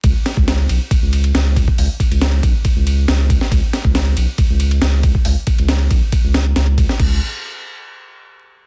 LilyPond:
<<
  \new Staff \with { instrumentName = "Sub bass" } { \clef bass \time 4/4 \key b \mixolydian \tempo 4 = 138 cis,16 r8 cis,8. b,,16 r16 cis,16 cis,8. cis,8. r16 | cis,16 r8 cis,8. b,,16 r8 cis,8. cis,8. r16 | cis,16 r8 cis,8. b,,16 r16 cis,16 cis,8. cis,8. r16 | cis,16 r8 cis,8. b,,16 r8 cis,8. cis,8. r16 |
cis,8 r2. r8 | }
  \new DrumStaff \with { instrumentName = "Drums" } \drummode { \time 4/4 <bd cymr>8 <cymr sn>16 bd16 <cymr sn>8 cymr8 <bd cymr>8 cymr16 cymr16 <cymr sn>8 <bd cymr>16 bd16 | hho8 <bd cymr>16 cymr16 <cymr sn>8 <bd cymr>8 <bd cymr>8 cymr8 <cymr sn>8 <bd cymr>16 sn16 | <bd cymr>8 <cymr sn>16 bd16 <cymr sn>8 cymr8 <bd cymr>8 cymr16 cymr16 <cymr sn>8 <bd cymr>16 bd16 | hho8 <bd cymr>16 cymr16 <cymr sn>8 <bd cymr>8 <bd cymr>8 <cymr sn>8 <cymr sn>8 <bd cymr>16 sn16 |
<cymc bd>4 r4 r4 r4 | }
>>